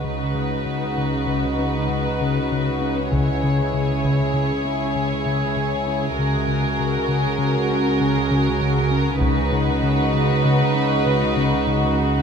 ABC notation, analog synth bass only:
X:1
M:5/4
L:1/8
Q:1/4=98
K:B
V:1 name="Analog synth bass" clef=bass
C, C, C, C, C, C C, C, C, C | C, C, C, C, C, C C, C, C, C | C, C, C, C, C, C C, C, C, C | C, C, C, C, C, C C, C, C, C |]